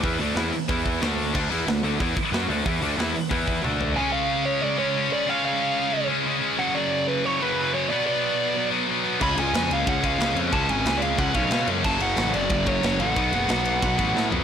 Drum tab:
CC |--------|x-------|--------|--------|
RD |--------|--------|--------|--------|
HH |oooooooo|-ooooooo|oooooo--|--------|
SD |--o---o-|--o---o-|--o-----|--------|
T1 |--------|--------|------o-|--------|
FT |--------|--------|-------o|--------|
BD |o---oo--|o---oo--|o---oo--|--------|

CC |--------|--------|--------|x-------|
RD |--------|--------|--------|-xxxxxxx|
HH |--------|--------|--------|--------|
SD |--------|--------|--------|--o---o-|
T1 |--------|--------|--------|--------|
FT |--------|--------|--------|--------|
BD |--------|--------|--------|o---oo--|

CC |--------|x-------|--------|
RD |xxxxxxxx|-xxxxxxx|xxxxxx--|
HH |--------|--------|--------|
SD |--o---o-|--o---o-|--o---o-|
T1 |--------|--------|--------|
FT |--------|--------|-------o|
BD |o---oo--|o---oo--|o---oo--|